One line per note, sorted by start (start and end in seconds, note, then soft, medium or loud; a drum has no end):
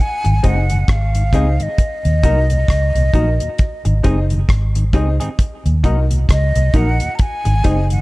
0.01 0.48 G#5 loud
0.24 0.42 G#1 medium
0.24 0.34 G#2 medium
0.24 0.34 D#3 medium
0.24 muted clean electric guitar stroke soft
0.24 closed hi-hat soft
0.43 0.85 F#1 medium
0.43 0.56 G#3 medium
0.43 0.58 C4 medium
0.43 0.56 C4 medium
0.43 0.61 D#4 medium
0.43 0.56 D#4 medium
0.43 0.58 D#4 medium
0.43 0.62 G#4 medium
0.43 0.59 G#4 medium
0.43 0.62 C5 medium
0.43 0.62 D#5 medium
0.43 0.93 F#5 medium
0.43 kick medium
0.43 closed hi-hat medium
0.70 0.79 G#2 medium
0.70 0.79 D#3 medium
0.70 closed hi-hat soft
0.88 1.30 G#1 medium
0.88 1.64 F5 medium
0.88 kick loud
0.88 cross-stick loud
0.88 closed hi-hat medium
1.15 1.24 G#2 soft
1.15 1.24 D#3 medium
1.15 closed hi-hat medium
1.33 1.57 C#2 medium
1.33 1.46 G#3 medium
1.33 1.48 C4 medium
1.33 1.46 C4 medium
1.33 1.52 D#4 medium
1.33 1.46 D#4 medium
1.33 1.48 D#4 medium
1.33 1.52 G#4 medium
1.33 1.49 G#4 medium
1.33 1.52 C5 medium
1.33 1.52 D#5 loud
1.33 kick medium
1.33 closed hi-hat medium
1.60 1.69 G#2 medium
1.60 1.69 D#3 medium
1.60 4.32 D#5 loud
1.60 closed hi-hat soft
1.78 kick loud
1.78 closed hi-hat loud
2.05 2.22 D#2 medium
2.05 2.14 D#2 medium
2.05 2.14 A#2 medium
2.05 closed hi-hat soft
2.23 2.65 C2 medium
2.23 2.36 F#3 medium
2.23 2.36 A#3 medium
2.23 2.38 D#4 medium
2.23 2.42 D#4 medium
2.23 2.36 D#4 medium
2.23 2.42 F#4 medium
2.23 2.38 F#4 medium
2.23 2.42 A#4 medium
2.23 2.39 A#4 loud
2.23 2.42 D#5 medium
2.23 kick medium
2.23 closed hi-hat medium
2.50 2.59 D#2 soft
2.50 2.59 A#2 medium
2.50 closed hi-hat medium
2.68 2.93 C#2 medium
2.68 kick loud
2.68 cross-stick loud
2.68 closed hi-hat medium
2.95 3.12 C2 medium
2.95 3.04 D#2 medium
2.95 3.04 A#2 medium
2.95 closed hi-hat soft
3.13 3.38 A#1 medium
3.13 3.26 F#3 medium
3.13 3.27 A#3 medium
3.13 3.32 D#4 medium
3.13 3.28 D#4 medium
3.13 3.27 D#4 medium
3.13 3.32 F#4 medium
3.13 3.28 F#4 medium
3.13 3.32 A#4 medium
3.13 3.29 A#4 medium
3.13 3.32 D#5 medium
3.13 kick medium
3.13 closed hi-hat medium
3.40 3.49 D#2 medium
3.40 3.49 A#2 soft
3.40 closed hi-hat soft
3.58 kick loud
3.58 closed hi-hat medium
3.85 4.02 G#1 medium
3.85 3.94 G#2 medium
3.85 3.94 D#3 medium
3.85 muted clean electric guitar stroke soft
3.85 closed hi-hat soft
4.03 4.45 F#1 medium
4.03 4.17 G#3 medium
4.03 4.18 C4 medium
4.03 4.17 C4 medium
4.03 4.22 D#4 medium
4.03 4.19 D#4 medium
4.03 4.17 D#4 medium
4.03 4.22 G#4 medium
4.03 4.19 G#4 medium
4.03 4.22 C5 medium
4.03 4.23 D#5 loud
4.03 kick medium
4.03 closed hi-hat medium
4.30 4.39 G#2 medium
4.30 4.39 D#3 medium
4.30 closed hi-hat soft
4.49 4.90 G#1 medium
4.49 kick medium
4.49 cross-stick loud
4.49 closed hi-hat medium
4.75 4.84 G#2 medium
4.75 4.84 D#3 medium
4.75 closed hi-hat medium
4.93 5.18 C#2 medium
4.93 5.06 G#3 medium
4.93 5.08 C4 medium
4.93 5.07 C4 medium
4.93 5.12 D#4 loud
4.93 5.09 D#4 medium
4.93 5.07 D#4 medium
4.93 5.12 G#4 medium
4.93 5.09 G#4 loud
4.93 5.13 C5 medium
4.93 5.13 D#5 loud
4.93 kick medium
4.93 closed hi-hat medium
5.20 5.29 G#2 soft
5.20 5.29 D#3 medium
5.20 5.29 C4 medium
5.20 5.29 D#4 medium
5.20 5.28 G#4 medium
5.20 closed hi-hat soft
5.39 kick loud
5.39 closed hi-hat medium
5.66 5.82 D#2 loud
5.66 5.75 D#2 medium
5.66 5.75 A#2 medium
5.66 closed hi-hat soft
5.84 5.97 F#3 medium
5.84 5.97 A#3 medium
5.84 6.02 D#4 medium
5.84 5.98 D#4 medium
5.84 5.97 D#4 medium
5.84 6.02 F#4 medium
5.84 5.99 F#4 medium
5.84 6.02 A#4 medium
5.84 5.99 A#4 medium
5.84 6.03 D#5 loud
5.84 kick medium
5.84 closed hi-hat medium
6.11 6.19 D#2 medium
6.11 6.19 A#2 medium
6.11 closed hi-hat medium
6.29 6.53 C#2 medium
6.29 6.78 D#5 loud
6.29 kick medium
6.29 cross-stick medium
6.29 closed hi-hat medium
6.55 6.73 C2 medium
6.55 6.64 D#2 medium
6.55 6.64 A#2 medium
6.55 closed hi-hat medium
6.74 6.98 A#1 medium
6.74 6.86 F#3 medium
6.74 6.87 A#3 medium
6.74 6.92 D#4 medium
6.74 6.88 D#4 medium
6.74 6.87 D#4 medium
6.74 6.92 F#4 medium
6.74 6.89 F#4 medium
6.74 6.93 A#4 medium
6.74 6.89 A#4 medium
6.74 6.93 D#5 medium
6.74 7.17 F#5 loud
6.74 kick medium
6.74 closed hi-hat medium
7.00 7.10 D#2 medium
7.00 7.09 A#2 medium
7.00 closed hi-hat medium
7.15 7.22 A#5 medium
7.15 closed hi-hat medium
7.20 7.91 G#5 loud
7.20 kick loud
7.45 7.63 G#1 medium
7.45 7.55 G#2 medium
7.45 7.55 D#3 medium
7.45 muted clean electric guitar stroke soft
7.45 closed hi-hat soft
7.64 8.01 F#1 medium
7.64 7.77 G#3 medium
7.64 7.78 C4 medium
7.64 7.77 C4 medium
7.64 7.82 D#4 medium
7.64 7.79 D#4 medium
7.64 7.77 D#4 medium
7.64 7.82 G#4 medium
7.64 7.79 G#4 medium
7.64 7.83 C5 medium
7.64 7.83 D#5 medium
7.64 kick medium
7.64 closed hi-hat medium
7.90 8.00 G#2 medium
7.90 7.99 D#3 medium
7.90 8.01 F#5 medium
7.90 closed hi-hat soft